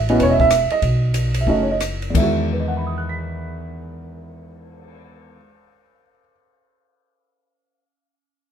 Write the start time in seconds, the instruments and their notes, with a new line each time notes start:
Already playing: upright bass A1
0.09 grand piano B3 C#4 E4 F#4 D#5, ride
0.19 upright bass E1, grand piano B4 C#5, kick, ride
0.30 grand piano D#5 E5
0.40 grand piano E5, kick
0.50 cross-stick, hi-hat pedal, ride
0.70 grand piano D#5, muted upright bass stroke, ride
0.82 upright bass B1, kick, ride
1.14 hi-hat pedal, ride
1.34 ride
1.41 grand piano E5
1.47 upright bass F#1, grand piano A3 C#4 D#4 F#4 D#5, kick
1.63 grand piano C#5
1.71 grand piano D#5
1.80 cross-stick, hi-hat pedal, ride
2.02 ride
2.10 grand piano E2
2.14 upright bass E2, grand piano D#3 G#3 E5, kick, crash
2.22 grand piano F#4
2.37 cymbal swell
2.52 grand piano B4
2.60 grand piano D#5
2.68 grand piano F#5
2.77 grand piano B5
2.87 grand piano D#6
2.98 grand piano F#6
3.09 grand piano B6